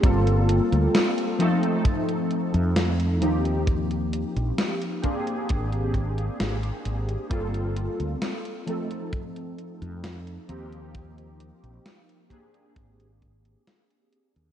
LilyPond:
<<
  \new Staff \with { instrumentName = "Synth keys" } { \time 4/4 \key g \minor \tempo 4 = 66 <g bes c' f' a'>4. <f a c' ees' a'>2 <f bes c' ees' g'>8~ | <f bes c' ees' g'>4. <bes c' d' g' aes'>2~ <bes c' d' g' aes'>8 | <g bes c' f' a'>4. <f a c' ees' a'>2 <f bes c' ees' g'>8~ | <f bes c' ees' g'>4. <bes c' d' g' aes'>2~ <bes c' d' g' aes'>8 | }
  \new Staff \with { instrumentName = "Fretless electric bass" } { \clef bass \time 4/4 \key g \minor g,,8 r16 d,16 r4. r16 f,8. ees,8~ | ees,8 r16 bes,,16 r4 aes,,8. r16 aes,,16 r16 aes,,16 r16 | g,,8 r16 d,16 r4. r16 f,8 r16 ees,8~ | ees,8 r16 bes,,16 r4 aes,,8. r4 ees,16 | }
  \new DrumStaff \with { instrumentName = "Drums" } \drummode { \time 4/4 <hh bd>16 hh16 hh16 hh16 <hh sn>16 hh16 hh16 hh16 <hh bd>16 hh16 hh16 hh16 <hh sn>16 hh16 hh16 hh16 | <hh bd>16 hh16 hh16 hh16 <hh sn>16 hh16 <hh bd>16 hh16 <hh bd>16 hh16 <hh bd>16 hh16 <hh sn>16 hh16 hh16 hh16 | <hh bd>16 hh16 hh16 hh16 <hh sn>16 hh16 hh16 hh16 <hh bd>16 hh16 hh16 hh16 <hh sn>16 hh16 hh16 hh16 | <hh bd>16 hh16 hh16 hh16 <hh sn>16 hh16 <hh bd>16 hh16 <hh bd>16 hh16 <hh bd>16 hh16 <hh sn>16 hh16 hh16 hh16 | }
>>